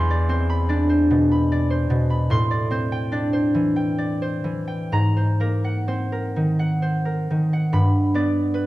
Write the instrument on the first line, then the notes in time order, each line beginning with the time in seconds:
harp
Already playing: E2 B3 D4 G4 G5 B5 C6
0.10 D5
0.29 C4 C5
0.50 B5
0.69 D4 D5
0.89 C5
1.11 B2
1.32 B5
1.52 D5
1.70 C5
1.90 B2
2.10 B5
2.30 A2 C6
2.51 D5
2.71 C4 C5
2.92 G5
3.12 D4 D5
3.33 C5
3.55 E3
3.76 G5
3.98 D5
4.22 C5
4.44 E3
4.68 G5
4.92 G#2 A#5
5.17 C5
5.40 A#3 A#4
5.64 F#5
5.88 C4 C5
6.12 A#4
6.36 D#3
6.59 F#5
6.82 C5
7.05 A#4
7.31 D#3
7.53 F#5
7.73 G2 B5
8.14 B3 D5
8.54 B4